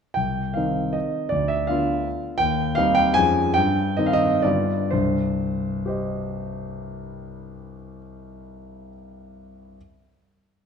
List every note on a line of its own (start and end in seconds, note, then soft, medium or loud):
0.14 0.55 C2 soft
0.14 0.55 G5 medium
0.54 1.28 D#3 soft
0.54 1.28 C4 soft
0.54 1.28 D#4 soft
0.54 0.94 F5 medium
0.93 1.30 D#5 medium
1.29 1.68 D2 soft
1.29 1.49 D5 medium
1.48 1.68 E5 medium
1.67 2.36 D3 soft
1.67 2.36 B3 soft
1.67 2.37 F4 medium
1.67 2.22 F5 medium
2.38 2.76 D#2 medium
2.38 2.76 G5 loud
2.75 3.13 G3 soft
2.75 3.13 C4 medium
2.75 3.13 D#4 medium
2.75 2.96 F5 loud
2.95 3.16 G5 loud
3.14 3.54 F2 medium
3.14 3.51 F3 soft
3.14 3.52 G#3 soft
3.14 3.52 C#4 soft
3.14 3.54 G#5 loud
3.54 3.97 G2 medium
3.54 3.97 G5 loud
3.97 4.41 D#3 soft
3.97 4.41 C4 medium
3.97 4.41 D#4 medium
3.97 4.06 D#5 medium
4.06 4.15 F5 medium
4.13 4.44 D#5 loud
4.42 4.90 G2 medium
4.42 4.88 D3 soft
4.42 4.88 B3 soft
4.42 4.88 F4 soft
4.42 4.91 D5 medium
4.90 7.96 C2 soft
4.90 7.96 G2 soft
4.90 5.86 C5 medium
5.86 8.89 G4 soft
5.86 8.91 C5 soft
5.86 8.93 D#5 soft